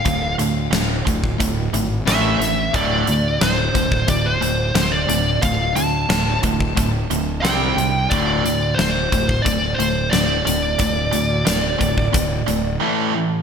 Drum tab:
HH |x-x-x-x-x-x-x-x-|x-x-x-x-x-x-x-x-|x-x-x-x-x-x-x-x-|x-x-x-x-x-x-x-x-|
SD |----o-------o-o-|----o-------o---|----o-------o---|----o-------o---|
BD |o-----ooo-------|o-----ooo-------|o-----ooo-------|o-----ooo-------|

HH |x-x-x-x-x-x-----|
SD |----o-----------|
BD |o-----ooo-------|